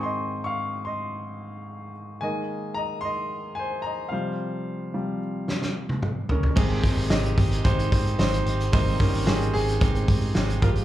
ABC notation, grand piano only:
X:1
M:4/4
L:1/16
Q:1/4=111
K:Ab
V:1 name="Grand piano"
[ec']3 [fd']3 [ec']8 z2 | [ea]4 [eb]2 [ec']4 [ca]2 [eb]2 [cf]2- | [cf]12 z2 [DB]2 | [CA]4 [Ge]4 [Ec]4 [Ec]4 |
[Ec]2 [DB]2 [CA]2 [CA]8 [FB]2 |]
V:2 name="Grand piano" clef=bass
[A,,E,C]4 z12 | [E,A,B,]6 z8 [C,F,G,]2- | [C,F,G,]4 [C,F,G,]2 z8 z2 | [C,A,B,]16 |
[C,G,B,]6 z8 [F,A,G]2 |]